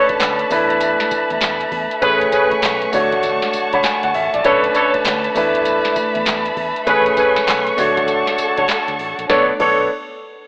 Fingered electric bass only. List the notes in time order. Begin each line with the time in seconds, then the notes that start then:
0.10 muted fingered electric bass stroke
0.21 D2
0.51 E2
1.12 muted fingered electric bass stroke
1.31 E2
1.42 E2
1.72 E2
2.02 A1
2.52 muted fingered electric bass stroke
2.63 B1
2.94 D2
3.54 muted fingered electric bass stroke
3.73 C#2
4.04 D2
4.15 A1
4.34 A#1
4.45 B1
4.95 muted fingered electric bass stroke
5.06 D2
5.36 E2
5.96 muted fingered electric bass stroke
6.16 E2
6.27 E2
6.57 E2
6.87 A1
7.37 muted fingered electric bass stroke
7.48 B1
7.78 D2
8.39 muted fingered electric bass stroke
8.58 C#2
8.88 D2
8.99 A1
9.19 A#1
9.30 B1
9.60 B1